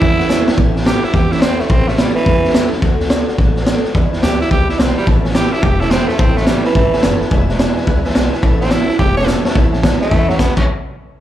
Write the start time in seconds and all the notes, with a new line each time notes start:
Already playing: E4
0.01 E2 E3 A3 C#4 E4 C#5 E5 A5, kick, snare
0.18 A3 C#4 E4 C#5 E5 F#5, snare
0.29 A2 E3 A3 C#4 E4 C#5 E5 A5, snare, hi-hat pedal
0.46 A3 C#4 E4 C#5 E5 A5, muted upright bass stroke, snare
0.57 A1 A2 E3 A3 C#4 E4, kick, snare
0.74 A3 C#4 E4, snare
0.81 A2 E3, snare
0.85 A3 C#4 E4 G4, snare, hi-hat pedal
1.03 A3 C#4 E4, muted upright bass stroke, snare
1.13 E2 E3 A3 C#4 E4 G4, kick, snare
1.31 A3 C#4 E4, snare
1.37 snare
1.41 A2 E3 A3 C4 C#4 E4, snare, hi-hat pedal
1.59 A3 C#4 E4, muted upright bass stroke, snare
1.69 A1 A2 E3 A3 C4 C#4 E4, kick, snare
1.86 A3 C#4 E4, snare
1.97 A2 E3 G3 A3 C#4 E4, snare, hi-hat pedal
2.15 E3 A3 C#4 E4, muted upright bass stroke, snare
2.25 E2 E3 A3 C#4 E4, kick, snare
2.44 A3 C#4 E4, snare
2.49 snare
2.54 A2 E3 A3 C#4 E4, snare, hi-hat pedal
2.72 A3 C#4 E4, muted upright bass stroke, snare
2.82 D2 D3 A3 D4 F#4, kick, snare
3.00 A3 D4 F#4, snare
3.05 snare
3.10 D3 A3 D4 F#4, snare, hi-hat pedal
3.28 A3 D4 F#4, muted upright bass stroke, snare
3.38 A1 D3 A3 D4 F#4, kick, snare
3.56 A3 D4 F#4, snare
3.66 D3 A3 D4 F#4, snare, hi-hat pedal
3.84 A3 D4 F#4, muted upright bass stroke, snare
3.95 E2 B2 E3 G#3 D4 E4, kick, snare
4.13 E3 G#3 D4 E4, muted upright bass stroke, snare
4.23 D2 E2 B2 E3 G#3 D4 E4 G4, snare, hi-hat pedal
4.40 E3 G#3 D4 E4, muted upright bass stroke, snare
4.50 C#2 E3 G#3 D4 E4 G4, kick, snare
4.67 E3 G#3 D4 E4, snare
4.78 B1 E2 B2 E3 G#3 C4 D4 E4, snare, hi-hat pedal
4.95 E3 G3 G#3 D4 E4, snare
5.05 A1 A2 E3 A3 C#4 E4 C#5 E5 A5, kick, snare
5.24 A3 C#4 E4 C#5 E5 G#5, snare
5.30 snare
5.34 A2 E3 A3 C#4 E4 G4 C#5 E5 B5, snare, hi-hat pedal
5.52 A3 C#4 E4 C#5 E5 A5, muted upright bass stroke, snare
5.61 E1 E3 A3 C#4 E4 G4 C#5 E5 A5, kick, snare
5.80 A3 C#4 E4 C#5 E5 A5, snare
5.90 A2 E3 A3 C4 C#4 E4 C#5 E5 A5, snare, hi-hat pedal
6.08 A3 C#4 E4 C#5 E5 A5, muted upright bass stroke, snare
6.18 A1 A2 E3 A3 C4 C#4 E4 C#5 E5 A5, kick, snare
6.36 A3 C#4 E4 C#5 E5 A5, snare
6.42 snare
6.46 A2 E3 G3 A3 C#4 E4 C#5 E5 A5, snare, hi-hat pedal
6.64 E3 A3 C#4 E4 C#5 E5 A5, muted upright bass stroke, snare
6.75 G#1 E3 A3 C#4 E4 C#5 E5 A5, kick, snare
6.93 A3 C#4 E4 C#5 E5 G#5, muted upright bass stroke, snare
6.98 snare
7.03 F#1 A2 E3 A3 C#4 E4 C#5 E5 A5, snare, hi-hat pedal
7.20 A3 C#4 E4 C#5 E5 A5, muted upright bass stroke, snare
7.30 E1 E2 B2 E3 G#3 D4 E4 B4 E5 G#5, kick, snare
7.49 E3 G#3 D4 E4 B4 E5 G#5, snare
7.54 snare
7.59 E2 B2 E3 G#3 D4 E4 B4 E5 G#5, snare, hi-hat pedal
7.77 E3 G#3 D4 E4 B4 E5 G#5, muted upright bass stroke, snare
7.87 C#2 E3 G#3 D4 E4 B4 E5 G#5, kick, snare
8.04 E3 G#3 D4 E4 B4 E5 G#5, muted upright bass stroke, snare
8.10 snare
8.15 B1 E2 B2 E3 G#3 D4 E4 B4 E5 G#5, snare, hi-hat pedal
8.32 E3 G#3 D4 E4 B4 E5 G#5, muted upright bass stroke, snare
8.42 A1 A2 E3 A3 C#4 E4 C#5 E5 A5, kick, snare
8.60 A3 C4 C#4 E4 C#5 E5 A5, snare
8.66 snare
8.71 A2 E3 A3 C#4 E4 C#5 E5 A5, snare, hi-hat pedal
8.88 A3 C#4 E4 C#5 E5 A5, muted upright bass stroke, snare
8.98 E1 E3 A3 C#4 E4 G4 C#5 E5 G#5, kick, snare
9.16 A3 C#4 E4 C#5 E5 A5, snare
9.23 A2, snare
9.27 E3 A3 C#4 E4 C#5 E5 A5, snare, hi-hat pedal
9.44 A3 C#4 E4 C#5 E5 A5, muted upright bass stroke, snare
9.54 A1 A2 E3 A3 C#4 E4 C#5 E5 A5, kick, snare
9.72 A3 C#4 E4 C#5 E5 A5, snare
9.82 E3 A3 C#4 E4 C#5 E5 A5, kick, snare, hi-hat pedal
10.01 A3 C#4 E4 C#5 E5 A5, muted upright bass stroke, snare
10.11 E2 A2 E3 A3 C#4 E4 C#5 E5 A5, kick, snare
10.28 F#3 A3 C#4 E4 C#5 E5 F#5, snare
10.38 E3 A3 B3 C#4 E4 C#5 E5 A5, kick, snare, hi-hat pedal
10.56 A1 A2 E3 A3 C#4 E4 C#5 E5 A5, kick, crash